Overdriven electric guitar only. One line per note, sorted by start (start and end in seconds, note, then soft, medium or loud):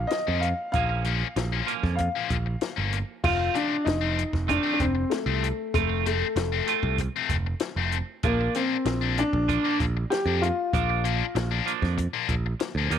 0.12 0.40 F3 medium
0.12 0.40 A#3 medium
0.44 0.72 F3 medium
0.44 0.72 A#3 medium
0.75 1.04 F3 medium
0.75 1.04 A#3 medium
0.75 1.05 C#4 medium
1.05 1.34 F3 medium
1.05 1.34 A#3 medium
1.36 1.65 F3 medium
1.36 1.65 A#3 medium
1.66 1.97 F3 medium
1.66 1.97 A#3 medium
1.66 1.97 C#4 medium
1.99 2.27 F3 medium
1.99 2.28 A#3 medium
2.31 2.59 F3 medium
2.31 2.59 A#3 medium
2.61 2.90 F3 medium
2.61 2.90 A#3 medium
2.93 3.21 F3 soft
2.93 3.21 A#3 medium
3.24 3.53 A3 medium
3.24 3.54 C4 medium
3.24 3.54 F4 medium
3.54 3.83 A3 medium
3.54 3.84 C4 medium
3.86 4.15 A3 medium
3.86 4.15 C4 medium
4.17 4.46 A3 medium
4.17 4.47 C4 medium
4.48 4.78 A3 medium
4.48 4.78 C4 medium
4.48 4.79 F4 loud
4.80 5.08 A3 medium
4.80 5.08 C4 medium
5.11 5.40 A3 medium
5.11 5.40 C4 medium
5.43 5.71 A3 medium
5.43 5.71 C4 medium
5.74 6.04 A3 medium
5.74 6.04 C4 medium
5.74 6.04 F4 medium
6.05 6.33 A3 medium
6.05 6.34 C4 medium
6.37 6.65 A3 medium
6.37 6.65 C4 medium
6.67 6.97 A3 medium
6.67 6.97 C4 medium
6.67 6.98 F4 medium
6.99 7.27 A3 medium
6.99 7.28 C4 medium
7.30 7.58 A3 medium
7.30 7.58 C4 medium
7.61 7.89 A3 medium
7.61 7.90 C4 medium
7.92 8.21 A3 medium
7.92 8.21 C4 medium
8.23 8.53 F3 medium
8.23 8.53 A#3 medium
8.23 8.53 D4 medium
8.55 8.83 F3 medium
8.55 8.83 A#3 medium
8.86 9.14 F3 medium
8.86 9.14 A#3 medium
9.18 9.46 F3 medium
9.18 9.46 A#3 medium
9.48 9.78 F3 medium
9.48 9.78 A#3 medium
9.48 9.78 D4 loud
9.79 10.08 F3 medium
9.79 10.08 A#3 medium
10.10 10.39 F3 medium
10.10 10.39 A#3 medium
10.43 10.71 F3 medium
10.43 10.70 A#3 medium
10.74 11.03 F3 medium
10.74 11.03 A#3 medium
10.74 11.03 D4 loud
11.04 11.32 F3 medium
11.04 11.33 A#3 medium
11.35 11.64 F3 medium
11.35 11.64 A#3 medium
11.66 11.96 F3 medium
11.66 11.96 A#3 medium
11.66 11.96 D4 medium
11.98 12.26 F3 medium
11.98 12.26 A#3 medium
12.29 12.57 F3 medium
12.29 12.57 A#3 medium
12.60 12.88 F3 medium
12.60 12.88 A#3 medium
12.91 12.99 D#3 medium
12.91 12.99 A#3 medium
12.91 12.99 D#4 medium